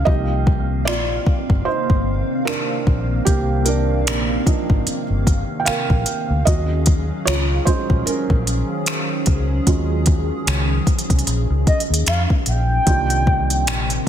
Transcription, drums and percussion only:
0.07 kick loud
0.47 kick loud
0.88 finger snap loud
1.26 kick medium
1.50 kick medium
1.90 kick medium
2.47 finger snap loud
2.87 kick medium
3.27 kick loud
3.27 closed hi-hat medium
3.66 closed hi-hat medium
4.07 finger snap loud
4.07 closed hi-hat medium
4.47 kick medium
4.47 closed hi-hat medium
4.70 kick medium
4.87 closed hi-hat medium
5.27 kick loud
5.27 closed hi-hat medium
5.66 finger snap loud
5.66 closed hi-hat medium
5.90 kick medium
6.06 closed hi-hat medium
6.47 kick loud
6.47 closed hi-hat medium
6.86 kick loud
6.86 closed hi-hat medium
7.27 finger snap loud
7.27 closed hi-hat medium
7.67 kick medium
7.67 closed hi-hat medium
7.90 kick medium
8.07 closed hi-hat medium
8.30 kick medium
8.47 closed hi-hat medium
8.86 finger snap loud
8.86 closed hi-hat medium
9.26 kick medium
9.26 closed hi-hat medium
9.67 kick loud
9.67 closed hi-hat medium
10.06 kick loud
10.06 closed hi-hat medium
10.47 finger snap loud
10.47 closed hi-hat medium
10.87 kick medium
10.87 closed hi-hat medium
10.99 closed hi-hat medium
11.10 kick medium
11.10 closed hi-hat medium
11.19 closed hi-hat medium
11.27 closed hi-hat medium
11.67 kick medium
11.67 closed hi-hat soft
11.80 closed hi-hat medium
11.94 closed hi-hat medium
12.07 finger snap loud
12.07 closed hi-hat medium
12.30 kick medium
12.46 closed hi-hat medium
12.87 kick loud
12.87 closed hi-hat medium
13.10 closed hi-hat soft
13.27 kick loud
13.50 closed hi-hat soft
13.67 finger snap loud
13.67 closed hi-hat medium
13.90 closed hi-hat soft

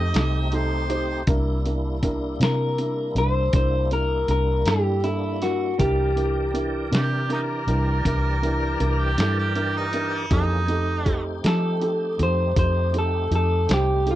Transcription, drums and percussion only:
0.14 snare medium
0.14 closed hi-hat medium
0.52 closed hi-hat medium
0.90 closed hi-hat soft
1.27 kick loud
1.27 closed hi-hat medium
1.66 closed hi-hat soft
2.03 kick medium
2.03 closed hi-hat medium
2.41 snare loud
2.41 closed hi-hat medium
2.78 closed hi-hat medium
3.16 closed hi-hat soft
3.53 kick loud
3.53 closed hi-hat medium
3.91 closed hi-hat medium
4.28 closed hi-hat soft
4.66 snare medium
4.66 closed hi-hat medium
5.04 closed hi-hat soft
5.42 snare soft
5.42 closed hi-hat soft
5.79 kick medium
5.79 closed hi-hat medium
6.17 closed hi-hat soft
6.55 closed hi-hat soft
6.93 snare medium
6.93 closed hi-hat medium
7.30 closed hi-hat medium
7.68 closed hi-hat medium
8.05 kick medium
8.05 closed hi-hat medium
8.43 closed hi-hat medium
8.80 closed hi-hat medium
9.18 snare medium
9.18 closed hi-hat medium
9.56 closed hi-hat medium
9.93 closed hi-hat soft
10.31 kick medium
10.31 closed hi-hat medium
10.68 closed hi-hat medium
11.06 kick medium
11.06 closed hi-hat soft
11.44 snare loud
11.44 closed hi-hat medium
11.82 closed hi-hat soft
12.19 closed hi-hat soft
12.56 kick loud
12.56 closed hi-hat medium
12.94 closed hi-hat medium
13.32 closed hi-hat medium
13.69 snare loud
13.69 closed hi-hat medium
14.07 closed hi-hat medium

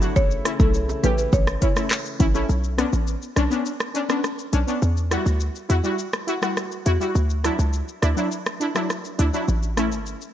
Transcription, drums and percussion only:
0.02 high bongo medium
0.02 shaker medium
0.16 kick loud
0.16 high bongo medium
0.16 shaker medium
0.31 shaker soft
0.45 cross-stick loud
0.45 closed hi-hat medium
0.45 shaker medium
0.60 kick loud
0.60 shaker medium
0.74 shaker medium
0.89 high bongo medium
0.89 shaker soft
1.04 closed hi-hat medium
1.04 low bongo medium
1.04 shaker medium
1.18 shaker medium
1.33 kick medium
1.33 high bongo medium
1.33 shaker medium
1.47 cross-stick loud
1.47 shaker medium
1.62 kick medium
1.62 closed hi-hat medium
1.62 shaker soft
1.76 cross-stick loud
1.76 shaker medium
1.91 cross-stick medium
1.91 clap loud
1.91 shaker medium
2.06 shaker medium
2.20 kick loud
2.20 closed hi-hat medium
2.20 low bongo medium
2.20 shaker medium
2.35 high bongo medium
2.35 shaker medium
2.49 shaker medium
2.64 shaker soft
2.78 cross-stick medium
2.78 closed hi-hat medium
2.78 shaker medium
2.93 shaker medium
3.07 shaker medium
3.22 shaker soft
3.36 cross-stick medium
3.36 closed hi-hat medium
3.36 shaker soft
3.51 shaker medium
3.66 shaker medium
3.80 cross-stick loud
3.80 shaker medium
3.95 closed hi-hat medium
3.95 shaker soft
4.10 cross-stick loud
4.10 shaker medium
4.24 cross-stick medium
4.24 shaker medium
4.39 shaker medium
4.53 closed hi-hat medium
4.53 shaker medium
4.68 shaker medium
4.82 shaker medium
4.97 shaker soft
5.11 cross-stick medium
5.11 closed hi-hat medium
5.11 shaker medium
5.26 shaker medium
5.40 shaker medium
5.55 shaker soft
5.70 closed hi-hat medium
5.70 shaker soft
5.84 shaker medium
5.99 shaker medium
6.13 cross-stick loud
6.13 shaker medium
6.28 closed hi-hat medium
6.28 shaker soft
6.43 cross-stick loud
6.43 shaker medium
6.57 cross-stick medium
6.57 shaker medium
6.72 shaker medium
6.86 closed hi-hat medium
6.86 shaker soft
7.01 shaker medium
7.15 shaker medium
7.30 shaker soft
7.44 cross-stick medium
7.44 closed hi-hat medium
7.44 shaker medium
7.59 shaker medium
7.73 shaker medium
7.88 shaker soft
8.02 cross-stick medium
8.02 closed hi-hat medium
8.02 shaker soft
8.17 shaker medium
8.32 shaker medium
8.46 cross-stick loud
8.46 shaker medium
8.61 closed hi-hat medium
8.61 shaker soft
8.76 cross-stick loud
8.76 shaker medium
8.90 cross-stick medium
8.90 shaker medium
9.05 shaker medium
9.19 closed hi-hat medium
9.19 shaker medium
9.34 shaker medium
9.48 shaker medium
9.63 shaker soft
9.77 cross-stick medium
9.77 closed hi-hat medium
9.77 shaker medium
9.92 shaker medium
10.06 shaker medium
10.21 shaker soft

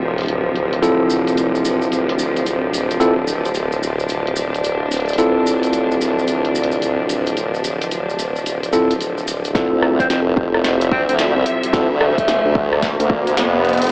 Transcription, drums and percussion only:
0.18 closed hi-hat soft
0.21 closed hi-hat soft
0.23 closed hi-hat soft
0.26 closed hi-hat soft
0.28 closed hi-hat medium
0.56 closed hi-hat soft
0.73 closed hi-hat medium
0.83 closed hi-hat medium
0.83 maracas soft
1.10 maracas medium
1.27 closed hi-hat soft
1.27 maracas soft
1.37 closed hi-hat medium
1.37 maracas soft
1.55 maracas soft
1.65 maracas medium
1.82 maracas soft
1.92 closed hi-hat medium
1.92 maracas soft
2.09 closed hi-hat soft
2.19 maracas medium
2.36 closed hi-hat soft
2.36 maracas soft
2.46 closed hi-hat medium
2.46 maracas soft
2.74 closed hi-hat soft
2.74 maracas medium
2.90 closed hi-hat medium
2.90 maracas soft
3.00 closed hi-hat medium
3.00 maracas soft
3.27 maracas medium
3.45 closed hi-hat soft
3.45 maracas soft
3.54 closed hi-hat medium
3.54 maracas soft
3.72 maracas soft
3.83 maracas medium
4.00 maracas soft
4.09 closed hi-hat medium
4.09 maracas soft
4.27 closed hi-hat soft
4.36 maracas medium
4.54 closed hi-hat soft
4.54 maracas soft
4.64 closed hi-hat medium
4.64 maracas soft
4.91 closed hi-hat soft
4.91 maracas medium
4.94 closed hi-hat soft
4.97 closed hi-hat soft
5.00 closed hi-hat soft
5.06 closed hi-hat soft
5.06 maracas soft
5.13 closed hi-hat medium
5.18 closed hi-hat medium
5.18 maracas medium
5.47 maracas medium
5.63 closed hi-hat soft
5.63 maracas soft
5.73 closed hi-hat medium
5.73 maracas soft
5.91 maracas soft
6.01 maracas medium
6.19 maracas soft
6.28 closed hi-hat medium
6.28 maracas soft
6.45 closed hi-hat soft
6.55 maracas medium
6.64 closed hi-hat soft
6.72 maracas soft
6.82 closed hi-hat medium
6.82 maracas soft
7.09 closed hi-hat soft
7.09 maracas medium
7.26 closed hi-hat medium
7.26 maracas soft
7.37 closed hi-hat medium
7.37 maracas soft
7.54 maracas soft
7.64 closed hi-hat soft
7.64 maracas medium
7.82 closed hi-hat soft
7.82 maracas soft
7.91 closed hi-hat medium
7.91 maracas soft
8.10 maracas soft
8.19 closed hi-hat soft
8.19 maracas medium
8.36 maracas soft
8.46 closed hi-hat medium
8.46 maracas medium
8.63 closed hi-hat soft
8.63 maracas soft
8.73 closed hi-hat soft
8.73 maracas medium
8.91 closed hi-hat soft
8.91 maracas soft
9.01 closed hi-hat medium
9.01 maracas soft
9.18 maracas soft
9.28 closed hi-hat medium
9.28 maracas medium
9.44 closed hi-hat medium
9.44 maracas soft
9.55 kick loud
9.55 snare soft
9.55 closed hi-hat medium
9.82 cross-stick medium
10.00 kick medium
10.00 closed hi-hat medium
10.10 snare soft
10.10 closed hi-hat medium
10.37 kick loud
10.54 cross-stick soft
10.64 snare soft
10.64 closed hi-hat medium
10.81 closed hi-hat medium
10.92 kick loud
11.09 closed hi-hat medium
11.19 snare medium
11.19 closed hi-hat medium
11.46 closed hi-hat medium
11.63 closed hi-hat medium
11.73 kick loud
11.73 snare medium
11.73 closed hi-hat medium
12.01 cross-stick medium
12.18 kick medium
12.18 closed hi-hat medium
12.28 snare medium
12.28 closed hi-hat medium
12.55 kick loud
12.73 cross-stick soft
12.82 kick medium
12.82 snare medium
12.82 closed hi-hat medium
13.00 closed hi-hat medium
13.10 kick loud
13.27 closed hi-hat medium
13.37 snare medium
13.37 closed hi-hat medium
13.65 closed hi-hat soft
13.69 closed hi-hat soft
13.73 closed hi-hat soft
13.77 closed hi-hat soft
13.82 closed hi-hat medium
13.84 closed hi-hat soft
13.87 closed hi-hat soft

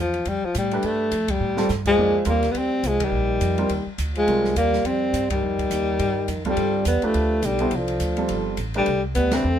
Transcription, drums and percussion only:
0.14 ride soft
0.25 ride medium
0.55 hi-hat pedal medium
0.55 ride medium
0.71 ride soft
0.83 ride medium
1.11 hi-hat pedal soft
1.11 ride medium
1.28 kick medium
1.28 ride medium
1.57 snare medium
1.69 snare soft
1.69 hi-hat pedal soft
1.85 kick medium
1.85 crash medium
2.25 hi-hat pedal medium
2.25 ride medium
2.43 snare soft
2.43 ride soft
2.55 ride medium
2.84 hi-hat pedal medium
2.84 ride medium
3.00 kick medium
3.00 ride medium
3.41 hi-hat pedal soft
3.41 ride medium
3.58 ride soft
3.69 ride medium
3.98 hi-hat pedal medium
3.98 ride medium
4.15 ride soft
4.28 ride medium
4.44 snare soft
4.56 hi-hat pedal medium
4.56 ride medium
4.73 snare soft
4.85 ride medium
5.14 hi-hat pedal medium
5.14 ride medium
5.30 kick medium
5.30 ride medium
5.59 kick medium
5.59 ride soft
5.71 hi-hat pedal medium
5.71 ride medium
5.99 ride medium
6.28 hi-hat pedal medium
6.28 ride medium
6.45 kick soft
6.45 ride soft
6.57 ride medium
6.85 hi-hat pedal medium
6.85 ride medium
7.02 ride soft
7.14 ride medium
7.42 hi-hat pedal medium
7.42 ride medium
7.59 ride soft
7.71 ride medium
7.88 ride soft
8.00 hi-hat pedal medium
8.00 ride medium
8.17 ride soft
8.29 ride medium
8.57 hi-hat pedal soft
8.57 ride medium
8.74 ride soft
8.86 ride medium
9.15 hi-hat pedal medium
9.15 ride medium
9.31 snare medium
9.31 ride medium

